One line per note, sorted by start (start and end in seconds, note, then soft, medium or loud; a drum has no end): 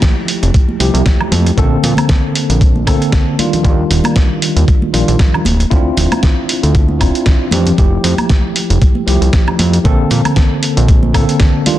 0.00 0.77 F3 medium
0.00 0.77 A3 medium
0.00 0.78 E4 medium
0.00 0.78 G4 medium
0.00 kick loud
0.00 snare loud
0.00 closed hi-hat medium
0.28 open hi-hat loud
0.43 0.51 F1 medium
0.43 closed hi-hat medium
0.54 kick loud
0.54 closed hi-hat medium
0.68 high conga medium
0.80 0.91 C2 medium
0.80 1.55 F3 medium
0.80 1.55 A3 medium
0.80 1.55 E4 medium
0.80 1.56 G4 medium
0.80 open hi-hat loud
0.94 1.03 C2 medium
0.94 closed hi-hat medium
1.06 kick loud
1.06 snare loud
1.06 closed hi-hat medium
1.06 low conga medium
1.21 low conga medium
1.21 high woodblock medium
1.31 1.51 F2 medium
1.31 open hi-hat loud
1.31 high conga medium
1.46 closed hi-hat medium
1.57 1.77 A#1 loud
1.57 2.84 D3 medium
1.57 2.84 A#3 medium
1.57 2.84 C4 medium
1.57 2.85 A4 loud
1.57 kick loud
1.57 closed hi-hat soft
1.83 1.94 A#2 loud
1.83 open hi-hat loud
1.83 low conga medium
1.97 closed hi-hat medium
1.97 high conga medium
1.97 high woodblock medium
2.09 kick loud
2.09 snare loud
2.09 closed hi-hat soft
2.35 open hi-hat loud
2.49 2.88 A#1 medium
2.49 closed hi-hat medium
2.61 kick loud
2.61 closed hi-hat medium
2.75 high conga medium
2.87 2.97 A#2 medium
2.87 3.36 D3 medium
2.87 3.36 A#3 medium
2.87 3.36 C4 medium
2.87 3.36 A4 medium
2.87 kick medium
2.87 open hi-hat loud
2.87 high woodblock medium
3.02 closed hi-hat medium
3.12 kick loud
3.12 snare loud
3.12 closed hi-hat medium
3.39 3.62 D#3 medium
3.39 3.62 G3 medium
3.39 3.62 D4 medium
3.39 3.62 F4 medium
3.39 open hi-hat loud
3.39 high conga medium
3.53 closed hi-hat medium
3.53 low conga medium
3.63 3.84 D#2 loud
3.63 4.91 D#3 medium
3.63 4.91 G3 medium
3.63 4.91 D4 medium
3.63 4.92 F4 medium
3.63 kick loud
3.63 closed hi-hat soft
3.90 4.01 D#1 medium
3.90 open hi-hat loud
4.04 closed hi-hat medium
4.04 high conga medium
4.04 high woodblock medium
4.16 kick loud
4.16 snare loud
4.16 closed hi-hat soft
4.42 open hi-hat loud
4.56 4.65 D#2 medium
4.56 closed hi-hat medium
4.68 kick loud
4.68 closed hi-hat medium
4.82 high conga medium
4.93 5.04 A#1 medium
4.93 5.44 D#3 medium
4.93 5.44 G3 medium
4.93 5.44 D4 medium
4.93 5.44 F4 medium
4.93 open hi-hat loud
5.08 5.17 A#1 medium
5.08 closed hi-hat medium
5.19 kick loud
5.19 snare loud
5.19 closed hi-hat soft
5.19 low conga medium
5.34 low conga medium
5.34 high woodblock medium
5.45 5.65 D1 loud
5.45 open hi-hat loud
5.45 high conga loud
5.60 closed hi-hat medium
5.70 5.91 D2 medium
5.70 6.98 C4 medium
5.70 6.98 D4 medium
5.70 6.98 E4 medium
5.70 6.99 F4 loud
5.70 kick loud
5.70 closed hi-hat soft
5.97 6.08 D1 medium
5.97 open hi-hat loud
5.97 low conga medium
6.12 closed hi-hat medium
6.12 high conga loud
6.12 high woodblock medium
6.23 kick loud
6.23 snare loud
6.23 closed hi-hat soft
6.49 open hi-hat loud
6.63 7.02 D2 medium
6.63 closed hi-hat medium
6.75 kick loud
6.75 closed hi-hat soft
6.88 high conga medium
7.00 7.11 D1 medium
7.00 7.50 C4 medium
7.00 7.50 D4 medium
7.00 7.49 E4 medium
7.00 7.50 F4 medium
7.00 kick medium
7.00 open hi-hat loud
7.00 high woodblock medium
7.15 closed hi-hat medium
7.26 kick loud
7.26 snare loud
7.26 closed hi-hat soft
7.51 7.72 F2 medium
7.51 7.75 E3 medium
7.51 7.75 C4 medium
7.51 7.75 D4 medium
7.51 7.76 G4 medium
7.51 open hi-hat loud
7.51 high conga medium
7.65 closed hi-hat medium
7.65 low conga medium
7.77 7.98 F1 medium
7.77 9.04 F3 medium
7.77 9.05 A3 medium
7.77 9.05 E4 medium
7.77 9.05 G4 medium
7.77 kick loud
7.77 closed hi-hat soft
8.04 8.15 F2 medium
8.04 open hi-hat loud
8.18 closed hi-hat medium
8.18 high conga medium
8.18 high woodblock medium
8.29 kick loud
8.29 snare loud
8.29 closed hi-hat soft
8.56 open hi-hat loud
8.70 8.79 F1 medium
8.70 closed hi-hat medium
8.82 kick loud
8.82 closed hi-hat medium
8.95 high conga medium
9.06 9.18 C2 medium
9.06 9.82 F3 medium
9.06 9.82 A3 medium
9.06 9.83 E4 medium
9.06 9.83 G4 medium
9.06 open hi-hat loud
9.21 9.30 C2 medium
9.21 closed hi-hat medium
9.33 kick loud
9.33 snare loud
9.33 closed hi-hat soft
9.33 low conga medium
9.47 low conga medium
9.47 high woodblock medium
9.59 9.79 F2 medium
9.59 open hi-hat loud
9.59 high conga medium
9.73 closed hi-hat medium
9.84 10.05 A#1 loud
9.84 11.11 D3 medium
9.84 11.12 A#3 medium
9.84 11.12 C4 medium
9.84 11.12 A4 loud
9.84 kick loud
9.84 closed hi-hat soft
10.10 10.21 A#2 medium
10.10 open hi-hat loud
10.10 low conga medium
10.25 closed hi-hat medium
10.25 high conga medium
10.25 high woodblock medium
10.36 kick loud
10.36 snare loud
10.36 closed hi-hat medium
10.63 open hi-hat medium
10.77 11.16 A#1 medium
10.77 closed hi-hat medium
10.88 kick loud
10.88 closed hi-hat medium
11.03 high conga medium
11.14 11.25 A#2 medium
11.14 11.63 D3 medium
11.14 11.63 A#3 medium
11.14 11.64 C4 medium
11.14 11.64 A4 medium
11.14 kick medium
11.14 open hi-hat loud
11.14 high woodblock medium
11.29 closed hi-hat medium
11.40 kick loud
11.40 snare loud
11.40 closed hi-hat soft
11.66 11.79 D#3 medium
11.66 11.79 G3 medium
11.66 11.79 D4 medium
11.66 11.79 F4 medium
11.66 open hi-hat loud
11.66 high conga medium